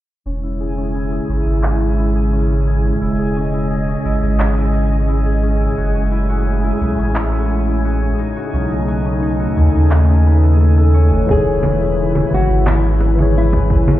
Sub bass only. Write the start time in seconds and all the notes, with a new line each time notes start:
0.26 E1
1.29 G#1
1.46 G#1
3.02 E1
4.05 G#1
4.23 G#1
5.78 F#1
6.81 B1
6.98 A1
8.53 B1
9.57 D#2
9.74 D#2
11.12 F#1
11.29 E1
12.32 G#1
12.50 G#1